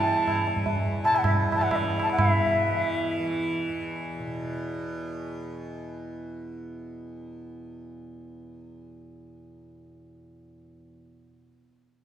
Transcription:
0.00 0.52 E2 medium
0.00 1.03 B2 medium
0.00 0.03 E3 medium
0.00 1.54 E3 medium
0.00 0.47 A5 loud
0.28 tabla na medium
0.28 tabla ge medium
0.47 tabla te medium
0.53 3.68 E2 medium
0.53 tabla ge medium
0.66 tabla tin medium
0.66 tabla ge medium
1.03 2.19 B2 medium
1.03 1.17 A5 loud
1.03 tabla na medium
1.15 1.24 F#5 loud
1.15 tabla na medium
1.24 1.34 E5 medium
1.24 tabla na loud
1.24 tabla ge loud
1.52 2.04 E3 medium
1.52 1.65 A5 loud
1.52 tabla na medium
1.61 1.72 F#5 loud
1.61 tabla na medium
1.71 1.77 E5 medium
1.71 tabla na loud
1.71 tabla ge loud
1.76 1.79 D5 medium
1.76 1.82 E5 medium
2.00 2.10 A5 medium
2.00 tabla na medium
2.04 2.70 E3 medium
2.10 2.19 F#5 loud
2.10 tabla na medium
2.19 4.19 B2 medium
2.19 3.30 E5 loud
2.19 tabla na loud
2.19 tabla ge loud
2.70 3.20 E3 medium
3.20 10.35 E3 medium
3.69 10.84 E2 medium
4.19 11.34 B2 medium

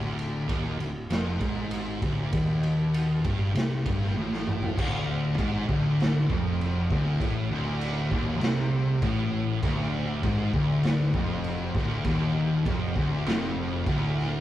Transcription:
0.00 0.45 D1 medium
0.00 0.48 D2 loud
0.19 ride medium
0.49 0.78 D#1 medium
0.49 0.78 D#2 loud
0.49 kick loud
0.49 ride medium
0.79 1.09 D1 medium
0.79 1.04 D2 medium
0.79 ride medium
1.10 1.39 F1 medium
1.10 1.40 F2 loud
1.10 snare loud
1.10 ride medium
1.40 1.98 G#1 medium
1.40 2.02 G#2 medium
1.40 kick loud
1.40 ride medium
1.71 ride medium
2.02 2.31 D1 medium
2.02 2.32 D2 medium
2.02 kick loud
2.02 ride medium
2.32 3.21 D#1 medium
2.32 3.24 D#2 loud
2.32 kick loud
2.32 ride medium
2.63 ride medium
2.94 ride loud
3.24 3.53 G1 medium
3.24 3.54 G2 loud
3.24 kick loud
3.24 ride medium
3.55 3.84 C2 medium
3.55 3.85 C3 loud
3.55 snare loud
3.55 ride medium
3.86 4.14 G1 medium
3.86 4.16 G2 loud
3.86 kick loud
3.86 ride medium
4.03 snare soft
4.16 4.73 A1 loud
4.16 4.77 A2 loud
4.16 high tom medium
4.33 snare medium
4.47 mid tom medium
4.62 floor tom medium
4.77 5.34 D1 medium
4.77 5.38 D2 loud
4.77 kick loud
4.77 crash loud
4.77 crash medium
5.38 5.67 G#1 medium
5.38 5.68 G#2 loud
5.38 kick loud
5.38 crash medium
5.69 6.26 D1 medium
5.69 6.29 D2 loud
5.69 kick loud
6.00 snare loud
6.00 crash medium
6.29 6.86 F1 medium
6.29 6.89 F2 loud
6.29 kick loud
6.61 crash medium
6.90 7.19 D1 loud
6.90 7.20 D2 loud
6.90 kick loud
7.20 7.49 A1 loud
7.20 7.50 A2 loud
7.20 kick loud
7.20 crash medium
7.51 8.08 D1 loud
7.51 8.11 D2 loud
7.81 crash medium
8.11 8.40 D#1 medium
8.11 8.42 D#2 loud
8.11 kick loud
8.41 8.99 C2 medium
8.41 9.02 C3 loud
8.41 snare loud
8.41 crash medium
9.02 9.59 A1 loud
9.02 9.63 A2 loud
9.02 kick loud
9.02 crash medium
9.62 10.20 D1 loud
9.62 10.23 D2 loud
9.62 kick loud
9.62 crash medium
10.23 10.52 G#1 loud
10.23 10.54 G#2 loud
10.23 kick loud
10.23 crash medium
10.53 11.10 D1 medium
10.53 11.14 D2 loud
10.53 kick loud
10.83 snare loud
10.83 crash medium
11.14 11.71 F1 medium
11.14 11.74 F2 loud
11.14 kick loud
11.44 crash medium
11.74 12.03 D1 loud
11.74 12.05 D2 loud
11.74 kick loud
11.74 snare soft
12.04 12.62 D#1 medium
12.04 12.65 D#2 loud
12.04 kick loud
12.04 crash medium
12.65 12.94 F1 medium
12.65 12.96 F2 loud
12.65 kick loud
12.65 crash medium
12.96 13.24 D1 medium
12.96 13.26 D2 loud
12.96 kick loud
13.25 13.82 F1 medium
13.25 13.86 F2 loud
13.25 snare loud
13.25 crash medium
13.86 14.40 D1 loud
13.86 14.40 D2 loud
13.86 kick loud
13.86 crash medium
14.19 snare soft

